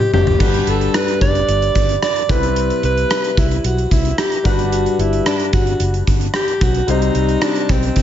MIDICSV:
0, 0, Header, 1, 5, 480
1, 0, Start_track
1, 0, Key_signature, 1, "major"
1, 0, Tempo, 540541
1, 354, Time_signature, 4, 2, 24, 8
1, 7124, End_track
2, 0, Start_track
2, 0, Title_t, "Alto saxophone"
2, 0, Program_c, 0, 65
2, 0, Note_on_c, 0, 67, 81
2, 102, Note_off_c, 0, 67, 0
2, 119, Note_on_c, 0, 67, 90
2, 608, Note_on_c, 0, 69, 83
2, 622, Note_off_c, 0, 67, 0
2, 845, Note_on_c, 0, 71, 91
2, 858, Note_off_c, 0, 69, 0
2, 1076, Note_off_c, 0, 71, 0
2, 1082, Note_on_c, 0, 74, 98
2, 1763, Note_off_c, 0, 74, 0
2, 1807, Note_on_c, 0, 74, 92
2, 2046, Note_on_c, 0, 71, 95
2, 2059, Note_off_c, 0, 74, 0
2, 2520, Note_off_c, 0, 71, 0
2, 2528, Note_on_c, 0, 71, 102
2, 3007, Note_on_c, 0, 64, 80
2, 3020, Note_off_c, 0, 71, 0
2, 3241, Note_off_c, 0, 64, 0
2, 3244, Note_on_c, 0, 66, 78
2, 3474, Note_on_c, 0, 64, 75
2, 3487, Note_off_c, 0, 66, 0
2, 3710, Note_off_c, 0, 64, 0
2, 3715, Note_on_c, 0, 67, 79
2, 3938, Note_off_c, 0, 67, 0
2, 3957, Note_on_c, 0, 66, 81
2, 4179, Note_off_c, 0, 66, 0
2, 4201, Note_on_c, 0, 66, 80
2, 4436, Note_on_c, 0, 64, 79
2, 4450, Note_off_c, 0, 66, 0
2, 4672, Note_off_c, 0, 64, 0
2, 4678, Note_on_c, 0, 62, 73
2, 4899, Note_off_c, 0, 62, 0
2, 4919, Note_on_c, 0, 66, 80
2, 5364, Note_off_c, 0, 66, 0
2, 5646, Note_on_c, 0, 67, 94
2, 5887, Note_on_c, 0, 66, 89
2, 5900, Note_off_c, 0, 67, 0
2, 6129, Note_on_c, 0, 63, 91
2, 6142, Note_off_c, 0, 66, 0
2, 6596, Note_on_c, 0, 62, 86
2, 6609, Note_off_c, 0, 63, 0
2, 6845, Note_on_c, 0, 60, 77
2, 6858, Note_off_c, 0, 62, 0
2, 7124, Note_off_c, 0, 60, 0
2, 7124, End_track
3, 0, Start_track
3, 0, Title_t, "Grand piano"
3, 0, Program_c, 1, 0
3, 0, Control_c, 1, 64, 127
3, 0, Note_on_c, 1, 48, 65
3, 0, Note_on_c, 1, 55, 66
3, 0, Note_on_c, 1, 60, 61
3, 0, Note_on_c, 1, 63, 62
3, 0, Note_on_c, 1, 72, 72
3, 314, Note_off_c, 1, 55, 0
3, 317, Note_off_c, 1, 60, 0
3, 322, Note_off_c, 1, 63, 0
3, 325, Note_off_c, 1, 72, 0
3, 348, Note_on_c, 1, 55, 59
3, 355, Note_on_c, 1, 62, 52
3, 358, Note_on_c, 1, 43, 55
3, 361, Note_on_c, 1, 66, 50
3, 368, Control_c, 1, 64, 0
3, 368, Note_on_c, 1, 71, 62
3, 372, Note_off_c, 1, 48, 0
3, 522, Control_c, 1, 64, 127
3, 1041, Note_off_c, 1, 43, 0
3, 1998, Note_off_c, 1, 55, 0
3, 2001, Note_off_c, 1, 62, 0
3, 2004, Note_off_c, 1, 66, 0
3, 2008, Note_off_c, 1, 71, 0
3, 2033, Note_on_c, 1, 55, 61
3, 2041, Note_on_c, 1, 60, 57
3, 2044, Note_on_c, 1, 48, 58
3, 2047, Note_on_c, 1, 64, 54
3, 2048, Control_c, 1, 64, 0
3, 2055, Note_on_c, 1, 71, 66
3, 2195, Control_c, 1, 64, 127
3, 2724, Note_off_c, 1, 48, 0
3, 3918, Note_off_c, 1, 55, 0
3, 3922, Note_off_c, 1, 60, 0
3, 3925, Note_off_c, 1, 64, 0
3, 3929, Note_off_c, 1, 71, 0
3, 3942, Note_on_c, 1, 55, 62
3, 3948, Note_on_c, 1, 62, 56
3, 3953, Note_on_c, 1, 43, 58
3, 3956, Note_on_c, 1, 66, 57
3, 3964, Note_on_c, 1, 71, 68
3, 3967, Control_c, 1, 64, 0
3, 4105, Control_c, 1, 64, 127
3, 4638, Note_off_c, 1, 43, 0
3, 5833, Note_off_c, 1, 55, 0
3, 5836, Note_off_c, 1, 62, 0
3, 5840, Note_off_c, 1, 66, 0
3, 5844, Note_off_c, 1, 71, 0
3, 6103, Note_on_c, 1, 55, 64
3, 6111, Note_on_c, 1, 60, 57
3, 6114, Note_on_c, 1, 48, 58
3, 6117, Note_on_c, 1, 63, 55
3, 6125, Note_on_c, 1, 72, 67
3, 6127, Control_c, 1, 64, 0
3, 6299, Control_c, 1, 64, 127
3, 6799, Note_off_c, 1, 48, 0
3, 7124, Note_off_c, 1, 55, 0
3, 7124, Note_off_c, 1, 60, 0
3, 7124, Note_off_c, 1, 63, 0
3, 7124, Note_off_c, 1, 72, 0
3, 7124, End_track
4, 0, Start_track
4, 0, Title_t, "Fingered electric bass"
4, 0, Program_c, 2, 33
4, 113, Note_on_c, 2, 30, 75
4, 293, Note_off_c, 2, 30, 0
4, 356, Note_on_c, 2, 31, 87
4, 536, Note_off_c, 2, 31, 0
4, 595, Note_on_c, 2, 31, 90
4, 775, Note_off_c, 2, 31, 0
4, 1076, Note_on_c, 2, 30, 73
4, 1255, Note_off_c, 2, 30, 0
4, 1316, Note_on_c, 2, 31, 90
4, 1495, Note_off_c, 2, 31, 0
4, 1558, Note_on_c, 2, 31, 69
4, 1737, Note_off_c, 2, 31, 0
4, 2037, Note_on_c, 2, 36, 90
4, 2396, Note_off_c, 2, 36, 0
4, 2514, Note_on_c, 2, 36, 92
4, 2694, Note_off_c, 2, 36, 0
4, 2996, Note_on_c, 2, 36, 82
4, 3176, Note_off_c, 2, 36, 0
4, 3234, Note_on_c, 2, 35, 82
4, 3414, Note_off_c, 2, 35, 0
4, 3474, Note_on_c, 2, 36, 73
4, 3654, Note_off_c, 2, 36, 0
4, 3953, Note_on_c, 2, 31, 86
4, 4313, Note_off_c, 2, 31, 0
4, 4427, Note_on_c, 2, 31, 93
4, 4610, Note_off_c, 2, 31, 0
4, 4912, Note_on_c, 2, 31, 76
4, 5093, Note_off_c, 2, 31, 0
4, 5147, Note_on_c, 2, 30, 90
4, 5330, Note_off_c, 2, 30, 0
4, 5394, Note_on_c, 2, 31, 80
4, 5574, Note_off_c, 2, 31, 0
4, 5871, Note_on_c, 2, 35, 85
4, 6053, Note_off_c, 2, 35, 0
4, 6106, Note_on_c, 2, 36, 101
4, 6289, Note_off_c, 2, 36, 0
4, 6348, Note_on_c, 2, 36, 88
4, 6530, Note_off_c, 2, 36, 0
4, 6832, Note_on_c, 2, 35, 84
4, 7013, Note_off_c, 2, 35, 0
4, 7071, Note_on_c, 2, 36, 84
4, 7124, Note_off_c, 2, 36, 0
4, 7124, End_track
5, 0, Start_track
5, 0, Title_t, "Drums"
5, 0, Note_on_c, 9, 47, 55
5, 0, Note_on_c, 9, 82, 43
5, 84, Note_off_c, 9, 47, 0
5, 88, Note_off_c, 9, 82, 0
5, 120, Note_on_c, 9, 45, 76
5, 121, Note_on_c, 9, 82, 39
5, 209, Note_off_c, 9, 45, 0
5, 209, Note_off_c, 9, 82, 0
5, 238, Note_on_c, 9, 82, 40
5, 240, Note_on_c, 9, 43, 73
5, 326, Note_off_c, 9, 82, 0
5, 328, Note_off_c, 9, 43, 0
5, 357, Note_on_c, 9, 36, 94
5, 358, Note_on_c, 9, 49, 68
5, 362, Note_on_c, 9, 82, 63
5, 446, Note_off_c, 9, 36, 0
5, 447, Note_off_c, 9, 49, 0
5, 451, Note_off_c, 9, 82, 0
5, 478, Note_on_c, 9, 42, 45
5, 482, Note_on_c, 9, 82, 43
5, 567, Note_off_c, 9, 42, 0
5, 570, Note_off_c, 9, 82, 0
5, 596, Note_on_c, 9, 42, 64
5, 599, Note_on_c, 9, 82, 37
5, 685, Note_off_c, 9, 42, 0
5, 688, Note_off_c, 9, 82, 0
5, 721, Note_on_c, 9, 42, 41
5, 721, Note_on_c, 9, 82, 41
5, 810, Note_off_c, 9, 42, 0
5, 810, Note_off_c, 9, 82, 0
5, 836, Note_on_c, 9, 42, 83
5, 836, Note_on_c, 9, 82, 65
5, 838, Note_on_c, 9, 37, 98
5, 925, Note_off_c, 9, 42, 0
5, 925, Note_off_c, 9, 82, 0
5, 927, Note_off_c, 9, 37, 0
5, 958, Note_on_c, 9, 82, 39
5, 960, Note_on_c, 9, 42, 49
5, 1047, Note_off_c, 9, 82, 0
5, 1049, Note_off_c, 9, 42, 0
5, 1077, Note_on_c, 9, 36, 87
5, 1077, Note_on_c, 9, 42, 62
5, 1166, Note_off_c, 9, 36, 0
5, 1166, Note_off_c, 9, 42, 0
5, 1197, Note_on_c, 9, 82, 45
5, 1201, Note_on_c, 9, 42, 43
5, 1286, Note_off_c, 9, 82, 0
5, 1290, Note_off_c, 9, 42, 0
5, 1319, Note_on_c, 9, 42, 90
5, 1323, Note_on_c, 9, 82, 59
5, 1408, Note_off_c, 9, 42, 0
5, 1411, Note_off_c, 9, 82, 0
5, 1439, Note_on_c, 9, 82, 45
5, 1441, Note_on_c, 9, 42, 45
5, 1528, Note_off_c, 9, 82, 0
5, 1530, Note_off_c, 9, 42, 0
5, 1556, Note_on_c, 9, 42, 68
5, 1558, Note_on_c, 9, 82, 41
5, 1559, Note_on_c, 9, 36, 73
5, 1645, Note_off_c, 9, 42, 0
5, 1647, Note_off_c, 9, 82, 0
5, 1648, Note_off_c, 9, 36, 0
5, 1678, Note_on_c, 9, 42, 50
5, 1682, Note_on_c, 9, 82, 50
5, 1767, Note_off_c, 9, 42, 0
5, 1771, Note_off_c, 9, 82, 0
5, 1798, Note_on_c, 9, 37, 90
5, 1799, Note_on_c, 9, 42, 75
5, 1805, Note_on_c, 9, 82, 65
5, 1887, Note_off_c, 9, 37, 0
5, 1888, Note_off_c, 9, 42, 0
5, 1894, Note_off_c, 9, 82, 0
5, 1918, Note_on_c, 9, 42, 48
5, 1925, Note_on_c, 9, 82, 43
5, 2007, Note_off_c, 9, 42, 0
5, 2014, Note_off_c, 9, 82, 0
5, 2037, Note_on_c, 9, 36, 98
5, 2041, Note_on_c, 9, 42, 65
5, 2048, Note_on_c, 9, 82, 43
5, 2126, Note_off_c, 9, 36, 0
5, 2130, Note_off_c, 9, 42, 0
5, 2137, Note_off_c, 9, 82, 0
5, 2159, Note_on_c, 9, 42, 50
5, 2163, Note_on_c, 9, 82, 41
5, 2248, Note_off_c, 9, 42, 0
5, 2251, Note_off_c, 9, 82, 0
5, 2276, Note_on_c, 9, 42, 80
5, 2287, Note_on_c, 9, 82, 67
5, 2365, Note_off_c, 9, 42, 0
5, 2375, Note_off_c, 9, 82, 0
5, 2401, Note_on_c, 9, 42, 45
5, 2401, Note_on_c, 9, 82, 44
5, 2490, Note_off_c, 9, 42, 0
5, 2490, Note_off_c, 9, 82, 0
5, 2516, Note_on_c, 9, 42, 71
5, 2522, Note_on_c, 9, 82, 35
5, 2605, Note_off_c, 9, 42, 0
5, 2611, Note_off_c, 9, 82, 0
5, 2639, Note_on_c, 9, 82, 42
5, 2642, Note_on_c, 9, 42, 40
5, 2728, Note_off_c, 9, 82, 0
5, 2731, Note_off_c, 9, 42, 0
5, 2756, Note_on_c, 9, 82, 63
5, 2757, Note_on_c, 9, 42, 81
5, 2759, Note_on_c, 9, 37, 100
5, 2845, Note_off_c, 9, 82, 0
5, 2846, Note_off_c, 9, 42, 0
5, 2848, Note_off_c, 9, 37, 0
5, 2875, Note_on_c, 9, 82, 40
5, 2879, Note_on_c, 9, 42, 51
5, 2964, Note_off_c, 9, 82, 0
5, 2968, Note_off_c, 9, 42, 0
5, 2997, Note_on_c, 9, 36, 88
5, 2998, Note_on_c, 9, 42, 63
5, 3085, Note_off_c, 9, 36, 0
5, 3087, Note_off_c, 9, 42, 0
5, 3112, Note_on_c, 9, 82, 46
5, 3120, Note_on_c, 9, 42, 42
5, 3201, Note_off_c, 9, 82, 0
5, 3209, Note_off_c, 9, 42, 0
5, 3236, Note_on_c, 9, 42, 87
5, 3237, Note_on_c, 9, 82, 58
5, 3325, Note_off_c, 9, 42, 0
5, 3326, Note_off_c, 9, 82, 0
5, 3354, Note_on_c, 9, 82, 47
5, 3360, Note_on_c, 9, 42, 47
5, 3442, Note_off_c, 9, 82, 0
5, 3449, Note_off_c, 9, 42, 0
5, 3472, Note_on_c, 9, 82, 45
5, 3475, Note_on_c, 9, 36, 79
5, 3476, Note_on_c, 9, 42, 65
5, 3561, Note_off_c, 9, 82, 0
5, 3564, Note_off_c, 9, 36, 0
5, 3565, Note_off_c, 9, 42, 0
5, 3592, Note_on_c, 9, 82, 49
5, 3596, Note_on_c, 9, 42, 47
5, 3681, Note_off_c, 9, 82, 0
5, 3685, Note_off_c, 9, 42, 0
5, 3714, Note_on_c, 9, 37, 94
5, 3714, Note_on_c, 9, 82, 64
5, 3715, Note_on_c, 9, 42, 80
5, 3803, Note_off_c, 9, 37, 0
5, 3803, Note_off_c, 9, 42, 0
5, 3803, Note_off_c, 9, 82, 0
5, 3833, Note_on_c, 9, 82, 43
5, 3834, Note_on_c, 9, 42, 46
5, 3922, Note_off_c, 9, 82, 0
5, 3923, Note_off_c, 9, 42, 0
5, 3953, Note_on_c, 9, 36, 98
5, 3954, Note_on_c, 9, 42, 67
5, 3954, Note_on_c, 9, 82, 43
5, 4042, Note_off_c, 9, 36, 0
5, 4043, Note_off_c, 9, 42, 0
5, 4043, Note_off_c, 9, 82, 0
5, 4072, Note_on_c, 9, 82, 42
5, 4075, Note_on_c, 9, 42, 52
5, 4161, Note_off_c, 9, 82, 0
5, 4163, Note_off_c, 9, 42, 0
5, 4193, Note_on_c, 9, 82, 65
5, 4195, Note_on_c, 9, 42, 77
5, 4281, Note_off_c, 9, 82, 0
5, 4284, Note_off_c, 9, 42, 0
5, 4315, Note_on_c, 9, 82, 45
5, 4318, Note_on_c, 9, 42, 45
5, 4403, Note_off_c, 9, 82, 0
5, 4407, Note_off_c, 9, 42, 0
5, 4435, Note_on_c, 9, 42, 70
5, 4436, Note_on_c, 9, 82, 37
5, 4524, Note_off_c, 9, 42, 0
5, 4525, Note_off_c, 9, 82, 0
5, 4554, Note_on_c, 9, 42, 43
5, 4556, Note_on_c, 9, 82, 43
5, 4643, Note_off_c, 9, 42, 0
5, 4645, Note_off_c, 9, 82, 0
5, 4670, Note_on_c, 9, 42, 82
5, 4673, Note_on_c, 9, 37, 100
5, 4673, Note_on_c, 9, 82, 66
5, 4759, Note_off_c, 9, 42, 0
5, 4761, Note_off_c, 9, 37, 0
5, 4762, Note_off_c, 9, 82, 0
5, 4792, Note_on_c, 9, 42, 50
5, 4796, Note_on_c, 9, 82, 39
5, 4881, Note_off_c, 9, 42, 0
5, 4885, Note_off_c, 9, 82, 0
5, 4909, Note_on_c, 9, 42, 65
5, 4913, Note_on_c, 9, 36, 89
5, 4998, Note_off_c, 9, 42, 0
5, 5001, Note_off_c, 9, 36, 0
5, 5033, Note_on_c, 9, 42, 43
5, 5036, Note_on_c, 9, 82, 46
5, 5121, Note_off_c, 9, 42, 0
5, 5125, Note_off_c, 9, 82, 0
5, 5149, Note_on_c, 9, 42, 93
5, 5159, Note_on_c, 9, 82, 65
5, 5238, Note_off_c, 9, 42, 0
5, 5248, Note_off_c, 9, 82, 0
5, 5274, Note_on_c, 9, 42, 47
5, 5278, Note_on_c, 9, 82, 47
5, 5363, Note_off_c, 9, 42, 0
5, 5367, Note_off_c, 9, 82, 0
5, 5393, Note_on_c, 9, 42, 64
5, 5394, Note_on_c, 9, 36, 75
5, 5395, Note_on_c, 9, 82, 45
5, 5482, Note_off_c, 9, 42, 0
5, 5483, Note_off_c, 9, 36, 0
5, 5484, Note_off_c, 9, 82, 0
5, 5513, Note_on_c, 9, 42, 48
5, 5516, Note_on_c, 9, 82, 48
5, 5602, Note_off_c, 9, 42, 0
5, 5605, Note_off_c, 9, 82, 0
5, 5627, Note_on_c, 9, 37, 101
5, 5628, Note_on_c, 9, 42, 76
5, 5639, Note_on_c, 9, 82, 63
5, 5716, Note_off_c, 9, 37, 0
5, 5716, Note_off_c, 9, 42, 0
5, 5728, Note_off_c, 9, 82, 0
5, 5753, Note_on_c, 9, 42, 49
5, 5760, Note_on_c, 9, 82, 44
5, 5842, Note_off_c, 9, 42, 0
5, 5849, Note_off_c, 9, 82, 0
5, 5871, Note_on_c, 9, 42, 68
5, 5872, Note_on_c, 9, 36, 95
5, 5883, Note_on_c, 9, 82, 45
5, 5960, Note_off_c, 9, 42, 0
5, 5961, Note_off_c, 9, 36, 0
5, 5971, Note_off_c, 9, 82, 0
5, 5989, Note_on_c, 9, 42, 49
5, 5999, Note_on_c, 9, 82, 42
5, 6078, Note_off_c, 9, 42, 0
5, 6088, Note_off_c, 9, 82, 0
5, 6110, Note_on_c, 9, 42, 81
5, 6120, Note_on_c, 9, 82, 65
5, 6199, Note_off_c, 9, 42, 0
5, 6208, Note_off_c, 9, 82, 0
5, 6233, Note_on_c, 9, 42, 48
5, 6235, Note_on_c, 9, 82, 45
5, 6321, Note_off_c, 9, 42, 0
5, 6323, Note_off_c, 9, 82, 0
5, 6348, Note_on_c, 9, 42, 68
5, 6355, Note_on_c, 9, 82, 37
5, 6437, Note_off_c, 9, 42, 0
5, 6444, Note_off_c, 9, 82, 0
5, 6470, Note_on_c, 9, 42, 44
5, 6475, Note_on_c, 9, 82, 41
5, 6559, Note_off_c, 9, 42, 0
5, 6564, Note_off_c, 9, 82, 0
5, 6584, Note_on_c, 9, 42, 84
5, 6587, Note_on_c, 9, 37, 99
5, 6590, Note_on_c, 9, 82, 67
5, 6673, Note_off_c, 9, 42, 0
5, 6675, Note_off_c, 9, 37, 0
5, 6679, Note_off_c, 9, 82, 0
5, 6708, Note_on_c, 9, 42, 50
5, 6712, Note_on_c, 9, 82, 41
5, 6796, Note_off_c, 9, 42, 0
5, 6801, Note_off_c, 9, 82, 0
5, 6829, Note_on_c, 9, 42, 64
5, 6832, Note_on_c, 9, 36, 86
5, 6918, Note_off_c, 9, 42, 0
5, 6921, Note_off_c, 9, 36, 0
5, 6952, Note_on_c, 9, 42, 44
5, 6955, Note_on_c, 9, 82, 48
5, 7040, Note_off_c, 9, 42, 0
5, 7044, Note_off_c, 9, 82, 0
5, 7067, Note_on_c, 9, 42, 84
5, 7072, Note_on_c, 9, 36, 79
5, 7082, Note_on_c, 9, 82, 65
5, 7124, Note_off_c, 9, 36, 0
5, 7124, Note_off_c, 9, 42, 0
5, 7124, Note_off_c, 9, 82, 0
5, 7124, End_track
0, 0, End_of_file